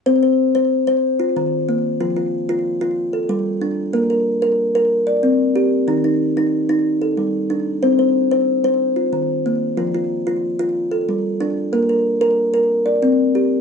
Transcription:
\new Staff \with { instrumentName = "Kalimba" } { \time 12/8 \key c \dorian \tempo 4. = 123 << { c''8 c''4. r4. f'4. r4 | f'8 f'4. r4. a'4. r4 | bes'8 bes'4. r4. d''4. r4 | ees'8 ees'4. r4. a'4. r4 |
c''8 c''4. r4. f'4. r4 | f'8 f'4. r4. a'4. r4 | bes'8 bes'4. r4. d''4. r4 | } \\ { c'4 r8 c''4 c''8 r4 ees4 bes4 | f4 r8 f'4 f'8 r4 g4 d'4 | bes4 r8 bes'4 bes'8 r4 c'4 g'4 | ees4 r8 ees'4 ees'8 r4 g4 d'4 |
c'4 r8 c''4 c''8 r4 ees4 bes4 | f4 r8 f'4 f'8 r4 g4 d'4 | bes4 r8 bes'4 bes'8 r4 c'4 g'4 | } >> }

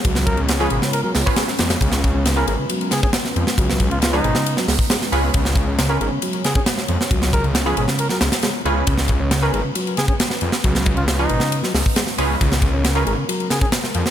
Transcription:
<<
  \new Staff \with { instrumentName = "Analog synth pad" } { \time 4/4 \key des \mixolydian \tempo 4 = 136 << { des''1 | ces''1~ | ces''1 | des''1~ |
des''1 | ces''1~ | ces''1 | bes'1 | } \\ { <aes ces' des' f'>1~ | <aes ces' des' f'>1~ | <aes ces' des' f'>1~ | <aes ces' des' f'>1~ |
<aes ces' des' f'>1~ | <aes ces' des' f'>1~ | <aes ces' des' f'>1~ | <aes ces' des' f'>1 | } >> }
  \new Staff \with { instrumentName = "Muted trumpet" } { \time 4/4 \key des \mixolydian r8 bes'16 r8 aes'16 aes'16 r16 bes'16 bes'16 r4. | r4 r16 bes'16 bes'16 r8. aes'16 aes'16 r4 | r8. f'16 f'16 ees'4 r4. r16 | r4 r16 bes'16 bes'16 r8. aes'16 aes'16 r4 |
r8 bes'16 r8 aes'16 aes'16 r16 bes'16 bes'16 r4. | r4 r16 bes'16 bes'16 r8. aes'16 aes'16 r4 | r8. f'16 f'16 ees'4 r4. r16 | r4 r16 bes'16 bes'16 r8. aes'16 aes'16 r4 | }
  \new Staff \with { instrumentName = "Synth stab" } { \time 4/4 \key des \mixolydian r4 r16 <des' f' aes' ces''>8 r4 <des' f' aes' ces''>16 r4 | r4 r16 <des' f' aes' ces''>16 r2 r8 | r4 r16 <des' f' aes' ces''>8 r4. r16 <des' f' aes' ces''>8 | r4 r16 <des' f' aes' ces''>16 r2 r8 |
r4 r16 <des' f' aes' ces''>8 r4. r16 <des' f' aes' ces''>8 | r4 r16 <des' f' aes' ces''>16 r2 r8 | r4 r16 <des' f' aes' ces''>8 r4. r16 <des' f' aes' ces''>8 | r4 r16 <des' f' aes' ces''>16 r2 r8 | }
  \new Staff \with { instrumentName = "Tonewheel organ" } { \clef bass \time 4/4 \key des \mixolydian ges8. des16 r16 f16 ces16 des8 ges16 aes16 r16 aes16 r8. | des16 r8 des'16 des8 aes16 des16 ges8 des16 des'16 r4 | ges8. des16 r16 f16 ces16 des8 ges16 aes16 r16 aes16 r8. | des16 r8 des'16 des8 aes16 des16 ges8 des16 des'16 r4 |
ges8. des16 r16 f16 ces16 des8 ges16 aes16 r16 aes16 r8. | des16 r8 des'16 des8 aes16 des16 ges8 des16 des'16 r4 | ges8. des16 r16 f16 ces16 des8 ges16 aes16 r16 aes16 r8. | des16 r8 des'16 des8 aes16 des16 ges8 des16 des'16 r4 | }
  \new Staff \with { instrumentName = "Detuned saw bass" } { \clef bass \time 4/4 \key des \mixolydian des,4. aes,,8 r8 des,8 r8 f,8 | des,4. aes,,8 r4. f,8 | des,4. aes,,8 r8 des,8 r8 des,8 | des,4. aes,,8 r4. f,8 |
des,4. aes,,8 r8 des,8 r8 des,8 | des,4. aes,,8 r4. f,8 | des,4. aes,,8 r8 des,8 r8 des,8 | des,4. aes,,8 r4. f,8 | }
  \new DrumStaff \with { instrumentName = "Drums" } \drummode { \time 4/4 <bd cymr>16 sn16 <bd cymr>16 cymr16 <cymr sn>8 cymr16 sn16 cymr8 <hho sn>16 bd16 <cymr sn>16 sn16 <cymr sn>16 <cymr sn>16 | <bd cymr>16 sn16 <bd cymr>8 <cymr sn>8 cymr8 cymr16 cymr16 <cymr sn>16 bd16 <cymr sn>16 sn16 cymr16 sn16 | <bd cymr>16 sn16 <bd cymr>16 cymr16 <cymr sn>8 cymr16 sn16 cymr16 sn16 <hho sn>16 bd16 <cymr sn>16 sn16 cymr8 | <bd cymr>16 sn16 <bd cymr>8 <cymr sn>8 cymr8 cymr16 cymr16 <cymr sn>16 bd16 <cymr sn>16 sn16 cymr16 sn16 |
<bd cymr>16 sn16 <bd cymr>16 cymr16 <cymr sn>8 cymr16 sn16 cymr16 sn16 <cymr sn>16 <cymr sn>16 <cymr sn>8 cymr8 | <bd cymr>16 sn16 <bd cymr>8 <cymr sn>8 cymr8 cymr16 cymr16 <cymr sn>16 bd16 <cymr sn>16 sn16 cymr16 sn16 | <bd cymr>16 sn16 <bd cymr>16 cymr16 <cymr sn>8 cymr16 sn16 cymr16 sn16 <hho sn>16 bd16 <cymr sn>16 sn16 cymr8 | <bd cymr>16 sn16 <bd cymr>8 <cymr sn>8 cymr8 cymr16 cymr16 <cymr sn>16 bd16 <cymr sn>16 sn16 cymr16 sn16 | }
>>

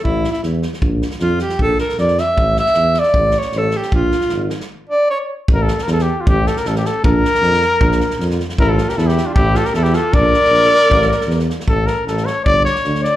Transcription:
<<
  \new Staff \with { instrumentName = "Trumpet" } { \time 2/4 \tempo 4 = 155 r2 | r2 | r2 | r2 |
r2 | r2 | r2 | bes'16 a'8 bes'16 a'16 g'8 f'16 |
g'8 a'16 bes'16 a'16 g'16 a'8 | bes'2~ | bes'4. r8 | bes'16 a'8 bes'16 a'16 g'8 f'16 |
g'8 a'16 bes'16 a'16 g'16 a'8 | d''2~ | d''4. r8 | a'8 bes'8 a'8 cis''8 |
d''8 cis''4 d''8 | }
  \new Staff \with { instrumentName = "Alto saxophone" } { \time 2/4 e'8. e'8 r8. | r4 f'8 g'8 | a'8 bes'8 d''8 e''8~ | e''8 e''4 d''8~ |
d''8 cis''8 a'8 g'8 | f'4. r8 | r8 d''8 cis''8 r8 | r2 |
r2 | r2 | r2 | e'16 f'8 g'16 e'16 e'8 d'16 |
e'8 f'16 g'16 e'16 e'16 f'8 | bes'2~ | bes'4. r8 | r2 |
r2 | }
  \new Staff \with { instrumentName = "Tuba" } { \clef bass \time 2/4 a,,4 e,4 | bes,,4 f,4 | bes,,4 f,4 | a,,4 e,4 |
a,,4 a,,4 | bes,,4 gis,,4 | r2 | a,,4 e,4 |
a,,4 a,,4 | bes,,4 f,4 | bes,,4 f,4 | a,,4 e,4 |
a,,4 e,4 | bes,,4 bes,,4 | a,,4 e,4 | a,,4 a,,4 |
g,,4 d,4 | }
  \new DrumStaff \with { instrumentName = "Drums" } \drummode { \time 2/4 bd8 sn16 sn16 sn8 sn16 sn16 | bd8 sn16 sn16 sn8 sn16 sn16 | bd8 sn16 sn16 sn16 sn16 sn8 | bd8 sn16 sn16 sn8 sn16 sn16 |
bd8 sn16 sn16 sn8 sn16 sn16 | bd8 sn16 sn16 sn8 sn16 sn16 | r4 r4 | bd8 sn16 sn16 sn16 sn8. |
bd8 sn16 sn16 sn16 sn16 sn8 | bd8 sn16 sn16 sn16 sn16 sn8 | bd16 sn16 sn16 sn16 sn16 sn16 sn16 sn16 | bd8 sn16 sn16 sn16 sn16 sn8 |
bd8 sn16 sn16 sn16 sn16 sn8 | bd8 sn16 sn16 sn16 sn16 sn8 | bd16 sn16 sn16 sn16 sn16 sn16 sn16 sn16 | bd8 sn8 sn16 sn16 sn8 |
bd8 sn16 sn16 sn16 sn16 sn8 | }
>>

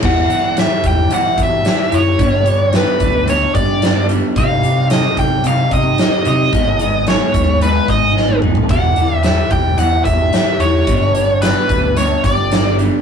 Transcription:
<<
  \new Staff \with { instrumentName = "Lead electric guitar" } { \time 4/4 \key g \lydian \tempo 4 = 111 fis''4 e''8 g''8 fis''8 e''4 cis''8~ | cis''4 b'4 cis''8 d''4 r8 | f''4 ees''8 g''8 f''8 ees''4 ees''8~ | ees''4 cis''4 b'8 dis''4 r8 |
fis''4 e''8 g''8 fis''8 e''4 cis''8~ | cis''4 b'4 cis''8 d''4 r8 | }
  \new Staff \with { instrumentName = "Clean electric guitar" } { \time 4/4 \key g \lydian <e, b, e g e' g'>8 <e g e' g'>8 <e g e' g'>4 <e, b, e g e' g'>8 <e g e' g'>8 <e g e' g'>8 <e g e' g'>8 | <g, d g b d' g'>8 <g b d' g'>8 <g b d' g'>4 <g, d g b d' g'>8 <g b d' g'>8 <g b d' g'>8 <g b d' g'>8 | <c g c' ees' g'>8 <c' ees' g'>8 <g c' ees' g'>4 <c g c' ees' g'>8 <c' ees' g'>8 <g c' ees' g'>8 <c' ees' g'>8 | <gis, dis gis b dis' gis'>8 <gis b dis' gis'>8 <gis b dis' gis'>4 <gis, dis gis b dis' gis'>8 <gis b dis' gis'>8 <gis b dis' gis'>8 <gis b dis' gis'>8 |
<e, b, e g e' g'>8 <e g e' g'>8 <e g e' g'>4 <e, b, e g e' g'>8 <e g e' g'>8 <e g e' g'>8 <e g e' g'>8 | <g, d g b d' g'>8 <g b d' g'>8 <g b d' g'>4 <g, d g b d' g'>8 <g b d' g'>8 <g b d' g'>8 <g b d' g'>8 | }
  \new Staff \with { instrumentName = "Picked electric bass" } { \clef bass \time 4/4 \key g \lydian e,8 e4 e,8 e8 e8 r8 fis,8 | g,4. d,4 g,4. | c,8 c4 c,8 c8 c8 r8 c8 | gis,,4. dis,4 gis,,4. |
e,,8 e,4 e,,8 e,8 e,8 r8 e,8 | g,,4. d,4 g,,4. | }
  \new DrumStaff \with { instrumentName = "Drums" } \drummode { \time 4/4 <cymc bd>8 hh8 <hh sn>8 <hh bd>8 hh8 <hh bd>8 <hh sn>8 hh8 | <hh bd>8 hh8 <hh sn>8 <hh bd>8 hh8 <hh bd>8 <hh sn>8 hh8 | <hh bd>8 hh8 <hh sn>8 <hh bd>8 hh8 <hh bd>8 <hh sn>8 hh8 | <hh bd>8 hh8 <hh sn>8 <hh bd>8 hh8 <hh bd>8 sn16 tommh16 toml16 tomfh16 |
<hh bd>8 hh8 <hh sn>8 <hh bd>8 hh8 <hh bd>8 <hh sn>8 hh8 | <hh bd>8 hh8 <hh sn>8 <hh bd>8 hh8 <hh bd>8 <hh sn>8 hh8 | }
>>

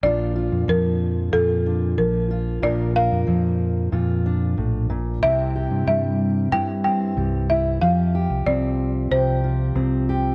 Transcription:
<<
  \new Staff \with { instrumentName = "Marimba" } { \time 4/4 \key bes \major \tempo 4 = 93 d''4 bes'4 a'4 bes'4 | d''8 f''4 r2 r8 | e''4 e''4 g''8 g''4 e''8 | f''4 d''4 c''4. r8 | }
  \new Staff \with { instrumentName = "Steel-string acoustic guitar" } { \time 4/4 \key bes \major << { <d' f'>8 f'4. f'8 d'4 f'8 | <d' f' bes'>8 bes'4. f'8 d'4. | <c' e' g'>8 g'4. e'8 c'4 e'8 | <f' g'>8 g'4. g'8 f'4 g'8 | } \\ { bes,4 f4 bes,4 f4 | bes,4 f4 bes,4 a,8 bes,8 | c4 g4 g,4 g4 | f4 c'4 c4 c'4 | } >> }
  \new Staff \with { instrumentName = "Fingered electric bass" } { \clef bass \time 4/4 \key bes \major bes,,8. f,16 f,4 f,4 bes,,4 | bes,,8. f,16 f,4 f,4 bes,,4 | c,8. g,16 g,4 g,4 c,4 | f,8. c,16 c,4 c,4 c,4 | }
>>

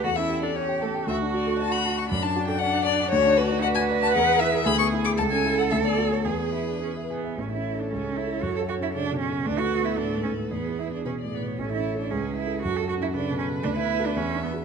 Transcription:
<<
  \new Staff \with { instrumentName = "Violin" } { \time 2/4 \key d \major \tempo 4 = 115 fis''16 e''8 d''16 cis''8 a'8 | e''8 d''8 a''16 b''8 cis'''16 | b''16 a''8 g''16 fis''8 d''8 | \key a \major cis''8 b'8 fis''16 gis''8 a''16 |
fis''8 e''8 b''16 cis'''8 d'''16 | a''16 gis''8 fis''16 e''16 d''8 cis''16 | b'4. r8 | cis''2~ |
cis''2 | b'2~ | b'4 b'16 d''8 cis''16 | cis''4 b'4 |
a'4 a'4 | b'4 e''4 | }
  \new Staff \with { instrumentName = "Viola" } { \time 2/4 \key d \major fis'16 e'8 d'16 cis'8 a8 | fis'4 fis'4 | d'4 d'4 | \key a \major fis'2 |
gis'4 gis'4 | a'2 | gis'4. r8 | a'2~ |
a'2 | a'2 | gis'4. r8 | a'4 gis'4 |
fis'4 b'4~ | b'2 | }
  \new Staff \with { instrumentName = "Grand piano" } { \time 2/4 \key d \major e,16 cis'16 g'16 a'16 cis''16 g''16 a''16 g''16 | d,16 d'16 fis'16 a'16 d''16 fis''16 a''16 fis''16 | fis,16 d'16 fis'16 a'16 d''16 fis''16 a''16 fis''16 | \key a \major d,16 d'16 fis'16 d'16 d''16 fis''16 d''16 fis''16 |
e,16 b16 e'16 gis'16 d,16 b16 e'16 gis'16 | cis,16 cis'16 e'16 a'16 d,16 b16 fis'16 a'16 | e,16 b16 e'16 gis'16 b'16 e''16 gis''16 e''16 | \tuplet 3/2 { a,,8 cis'8 <e' a'>8 cis,8 cis'8 <e' a'>8 } |
\tuplet 3/2 { fis,8 fis'8 cis'8 cis8 b,8 cis8 } | \tuplet 3/2 { d,8 fis'8 b8 a,8 gis,8 a,8 } | \tuplet 3/2 { e,8 e'8 b8 b,8 a,8 b,8 } | \tuplet 3/2 { a,,8 cis'8 <e' a'>8 cis,8 cis'8 <e' a'>8 } |
\tuplet 3/2 { fis,8 fis'8 cis'8 cis8 b,8 cis8 } | \tuplet 3/2 { d,8 b8 <fis' a'>8 e,8 d'8 <fis' gis'>8 } | }
  \new Staff \with { instrumentName = "Cello" } { \time 2/4 \key d \major a'4 g'4 | fis'2 | d'2~ | \key a \major d'4 b'4~ |
b'4 gis'4 | a'2 | gis'8 e'16 d'16 cis'8 b8 | cis'16 e'8 d'16 cis'8 e'8 |
fis'16 a'16 fis'16 e'16 d'8 cis'8 | d'16 fis'8 e'16 d'8 cis'8 | b8 e'16 d'16 cis'8 b8 | cis'16 e'8 d'16 cis'8 e'8 |
fis'16 a'16 fis'16 e'16 d'8 cis'8 | d'16 e'8 d'16 cis'8 b8 | }
>>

